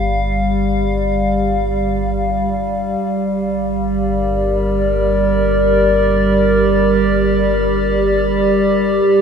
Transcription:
0.00 2.95 G1 medium
0.00 9.22 G3 medium
0.00 3.01 G4 medium
0.00 3.02 D5 medium
0.00 4.19 F5 medium
3.01 9.00 G1 medium
3.17 9.22 G4 medium
3.44 9.22 D5 medium
4.00 9.05 A#4 medium
9.06 9.22 G1 medium

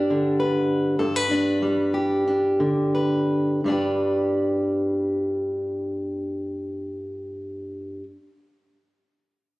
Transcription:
0.00 0.99 G2 medium
0.00 1.61 G3 medium
0.00 1.31 D4 medium
0.00 1.02 G4 soft
0.00 0.39 B4 medium
0.10 1.00 D3 medium
0.40 0.99 B4 soft
0.99 3.63 G2 medium
0.99 1.16 A4 medium
1.16 2.93 B4 soft
1.31 2.26 D4 soft
1.62 3.65 G3 medium
1.94 3.59 G4 soft
2.28 3.60 D4 soft
2.60 3.64 D3 soft
2.95 3.60 B4 soft
3.64 8.01 G2 soft
3.64 8.02 G3 soft
3.64 8.03 D4 soft
3.70 8.04 G4 soft
3.70 8.05 B4 soft

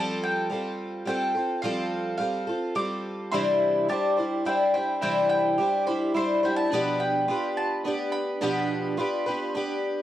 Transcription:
0.00 0.50 F3 medium
0.00 0.49 G3 medium
0.00 0.51 C4 medium
0.00 0.51 F4 medium
0.00 0.52 A4 loud
0.00 0.23 A5 loud
0.24 1.04 G5 loud
0.50 1.05 G3 medium
0.50 1.07 C4 medium
0.50 1.07 F4 medium
0.50 1.08 A4 medium
1.05 1.35 G3 medium
1.05 1.36 C4 medium
1.05 1.36 F4 medium
1.05 1.34 A4 medium
1.05 1.62 G5 loud
1.35 1.63 C4 soft
1.35 1.64 F4 soft
1.35 1.64 A4 soft
1.62 2.20 F3 medium
1.62 2.18 G3 medium
1.62 2.20 C4 medium
1.62 2.20 F4 medium
1.62 2.21 A4 loud
1.62 2.15 F5 medium
2.18 2.47 G3 medium
2.18 2.48 C4 medium
2.18 2.48 F4 medium
2.18 2.75 F5 medium
2.22 2.46 A4 medium
2.47 2.75 C4 soft
2.47 2.76 F4 soft
2.47 2.76 A4 soft
2.75 3.33 G3 medium
2.75 3.33 C4 medium
2.75 3.33 F4 medium
2.75 3.34 A4 medium
2.75 3.31 D6 loud
3.31 3.89 C3 medium
3.31 3.89 E3 medium
3.31 3.88 G3 medium
3.31 3.90 D4 medium
3.31 3.90 E4 medium
3.31 3.90 C5 medium
3.31 3.85 C6 loud
3.88 4.17 G3 medium
3.88 4.18 D4 medium
3.88 4.17 E4 medium
3.88 4.45 G4 medium
3.88 4.16 C5 medium
3.88 4.46 A5 medium
4.17 4.44 G3 soft
4.17 4.45 D4 soft
4.17 4.46 E4 soft
4.17 4.45 C5 soft
4.45 4.74 G3 medium
4.45 4.74 D4 medium
4.45 4.74 E4 medium
4.45 4.73 C5 medium
4.45 4.72 G5 loud
4.74 5.01 G3 soft
4.74 5.02 D4 soft
4.74 5.02 E4 soft
4.74 5.02 C5 soft
4.74 5.00 G5 medium
5.02 5.59 C3 medium
5.02 5.59 E3 medium
5.02 5.57 G3 medium
5.02 5.59 D4 medium
5.02 5.59 E4 medium
5.02 5.60 C5 medium
5.02 5.28 G5 medium
5.29 5.82 G5 medium
5.58 5.87 G3 medium
5.58 5.87 D4 medium
5.58 5.87 E4 medium
5.58 6.14 G4 medium
5.58 5.85 C5 medium
5.87 6.13 G3 soft
5.87 6.14 D4 soft
5.87 6.16 E4 medium
5.87 6.15 C5 medium
5.87 6.13 B5 medium
6.14 6.43 G3 medium
6.14 6.44 D4 medium
6.14 6.43 E4 medium
6.14 6.42 C5 medium
6.14 6.42 C6 loud
6.43 6.73 G3 soft
6.43 6.73 D4 soft
6.43 6.72 E4 soft
6.43 6.71 C5 medium
6.43 6.56 G5 medium
6.56 6.96 A5 medium
6.72 7.28 B2 medium
6.72 7.29 F3 medium
6.72 7.27 B3 medium
6.72 7.28 D4 medium
6.72 7.30 G4 medium
6.72 7.29 B4 medium
7.00 7.57 G5 medium
7.28 7.83 B3 medium
7.28 7.85 D4 medium
7.28 7.84 F4 medium
7.28 7.87 G4 medium
7.28 7.86 B4 medium
7.57 8.09 A5 medium
7.85 8.41 B3 medium
7.85 8.41 D4 medium
7.85 8.43 G4 medium
7.85 8.42 B4 medium
8.12 9.50 B5 loud
8.41 8.97 B2 medium
8.41 8.98 F3 medium
8.41 8.96 B3 medium
8.41 8.97 D4 medium
8.41 8.98 G4 medium
8.41 8.99 B4 medium
8.97 9.26 B3 medium
8.97 9.26 D4 medium
8.97 9.53 F4 medium
8.97 9.27 G4 medium
8.97 9.25 B4 medium
9.26 9.54 B3 soft
9.26 9.55 D4 medium
9.26 9.55 G4 medium
9.26 9.54 B4 medium
9.55 10.02 B3 medium
9.55 10.02 D4 medium
9.55 10.02 G4 medium
9.55 10.02 B4 medium

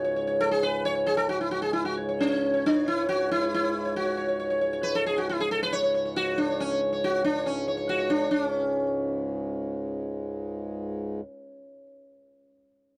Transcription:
0.00 8.29 C#2 medium
0.00 8.29 G#2 medium
0.00 0.12 F#4 medium
0.04 0.15 C#5 soft
0.16 0.26 C#5 soft
0.27 0.48 C#5 soft
0.41 0.51 A4 loud
0.51 0.62 G#4 medium
0.63 0.85 B4 loud
0.85 0.94 C#5 loud
0.95 1.16 C#5 soft
1.06 1.17 G#4 medium
1.17 1.29 A4 loud
1.29 1.40 F#4 medium
1.41 1.51 E4 medium
1.51 1.61 F#4 medium
1.62 1.73 G#4 medium
1.73 1.84 E4 medium
1.85 1.96 F#4 medium
1.97 2.07 C#5 soft
2.09 2.29 C#5 soft
2.20 2.66 C#4 medium
2.32 2.52 C#5 soft
2.54 2.74 C#5 soft
2.66 2.88 D4 medium
2.76 2.96 C#5 soft
2.88 3.08 E4 loud
2.98 3.17 C#5 soft
3.09 3.29 F#4 loud
3.18 3.39 C#5 soft
3.31 3.53 E4 loud
3.41 3.62 C#5 soft
3.54 3.96 E4 loud
3.63 3.84 C#5 soft
3.85 4.04 C#5 soft
3.96 4.59 F#4 medium
4.05 4.16 C#5 soft
4.17 4.27 C#5 soft
4.28 4.38 C#5 soft
4.40 4.49 C#5 soft
4.50 4.60 C#5 soft
4.61 4.72 C#5 soft
4.73 4.94 C#5 soft
4.83 4.95 B4 loud
4.95 5.06 A4 loud
5.06 5.18 G#4 medium
5.18 5.29 F#4 medium
5.29 5.40 E4 medium
5.40 5.51 G#4 medium
5.51 5.62 A4 loud
5.63 5.72 B4 loud
5.73 5.82 C#5 loud
5.83 5.93 C#5 soft
5.94 6.04 C#5 soft
6.05 6.25 C#5 soft
6.16 6.38 F#4 loud
6.28 6.47 C#5 soft
6.38 6.60 D4 medium
6.50 6.69 C#5 soft
6.60 6.80 C#4 medium
6.71 6.90 C#5 soft
6.93 7.12 C#5 soft
7.04 7.24 F#4 loud
7.24 7.46 D4 loud
7.36 7.55 C#5 soft
7.46 7.65 C#4 medium
7.68 7.76 C#5 soft
7.77 7.97 C#5 soft
7.89 8.10 F#4 loud
7.98 8.18 C#5 soft
8.10 8.31 D4 loud
8.21 8.40 C#5 soft
8.30 11.21 C#2 medium
8.30 11.21 G#2 medium
8.30 8.45 D4 medium
8.45 11.87 C#4 medium

